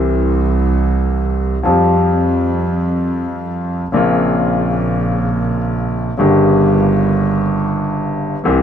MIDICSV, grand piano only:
0, 0, Header, 1, 2, 480
1, 0, Start_track
1, 0, Tempo, 500000
1, 8279, End_track
2, 0, Start_track
2, 0, Title_t, "Grand piano"
2, 0, Program_c, 0, 0
2, 0, Note_on_c, 0, 36, 63
2, 0, Note_on_c, 0, 48, 61
2, 0, Note_on_c, 0, 52, 52
2, 0, Note_on_c, 0, 55, 50
2, 0, Note_on_c, 0, 60, 52
2, 0, Note_on_c, 0, 67, 57
2, 1469, Note_off_c, 0, 52, 0
2, 1477, Note_off_c, 0, 55, 0
2, 1478, Note_off_c, 0, 48, 0
2, 1480, Note_off_c, 0, 36, 0
2, 1481, Note_off_c, 0, 60, 0
2, 1488, Note_off_c, 0, 67, 0
2, 1568, Note_on_c, 0, 53, 56
2, 1582, Note_off_c, 0, 53, 0
2, 1582, Note_on_c, 0, 55, 47
2, 1586, Note_on_c, 0, 41, 62
2, 1587, Note_on_c, 0, 53, 59
2, 1597, Note_on_c, 0, 60, 49
2, 1610, Note_on_c, 0, 67, 53
2, 3658, Note_off_c, 0, 55, 0
2, 3660, Note_off_c, 0, 41, 0
2, 3661, Note_off_c, 0, 53, 0
2, 3666, Note_off_c, 0, 60, 0
2, 3672, Note_off_c, 0, 67, 0
2, 3764, Note_on_c, 0, 49, 56
2, 3778, Note_on_c, 0, 58, 49
2, 3780, Note_on_c, 0, 34, 68
2, 3783, Note_on_c, 0, 46, 61
2, 3789, Note_on_c, 0, 60, 53
2, 3801, Note_on_c, 0, 65, 65
2, 5827, Note_off_c, 0, 49, 0
2, 5834, Note_off_c, 0, 58, 0
2, 5835, Note_off_c, 0, 34, 0
2, 5837, Note_off_c, 0, 46, 0
2, 5839, Note_off_c, 0, 60, 0
2, 5845, Note_off_c, 0, 65, 0
2, 5926, Note_on_c, 0, 49, 59
2, 5938, Note_on_c, 0, 55, 49
2, 5942, Note_on_c, 0, 31, 67
2, 5946, Note_on_c, 0, 43, 68
2, 5954, Note_on_c, 0, 58, 46
2, 5963, Note_on_c, 0, 67, 62
2, 7995, Note_off_c, 0, 49, 0
2, 8001, Note_off_c, 0, 55, 0
2, 8003, Note_off_c, 0, 31, 0
2, 8005, Note_off_c, 0, 43, 0
2, 8008, Note_off_c, 0, 58, 0
2, 8013, Note_off_c, 0, 67, 0
2, 8099, Note_on_c, 0, 52, 56
2, 8110, Note_on_c, 0, 55, 50
2, 8113, Note_on_c, 0, 48, 70
2, 8114, Note_on_c, 0, 36, 71
2, 8121, Note_on_c, 0, 60, 50
2, 8136, Note_on_c, 0, 67, 64
2, 8279, Note_off_c, 0, 36, 0
2, 8279, Note_off_c, 0, 48, 0
2, 8279, Note_off_c, 0, 52, 0
2, 8279, Note_off_c, 0, 55, 0
2, 8279, Note_off_c, 0, 60, 0
2, 8279, Note_off_c, 0, 67, 0
2, 8279, End_track
0, 0, End_of_file